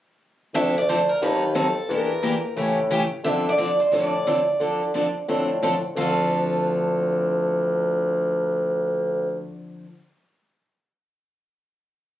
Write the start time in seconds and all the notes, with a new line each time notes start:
0.54 D2 D3 F3 C4 D4 A4 E5
0.78 D5
0.89 D3 F3 C4 D4 A4 C5
1.09 A#4
1.21 D#2 D#3 F#3 C4 D#4 A4 B4
1.55 D#3 F#3 C4 D#4 A4
1.88 E2 E3 A#3 D4 G4 A#4
2.23 E3 A#3 D4 G4
2.56 A2 C#3 E3 A3 C#4 G4
2.90 C#3 E3 A3 C#4 G4
3.23 D3 F3 C4 D4 A4 E5
3.49 D5
3.58 D3 F3 C4 D4 A4
3.80 C5
3.92 A2 D3 F3 C4 D4 A4 D5
4.27 D3 F3 C4 D4 A4
4.60 D3 F3 C4 D4 A4
4.94 D3 F3 C4 D4 A4
5.28 A2 D3 F3 C4 D4 A4
5.62 D3 F3 C4 D4 A4
5.95 D2 D3 F3 C4 D4 F5
6.00 A4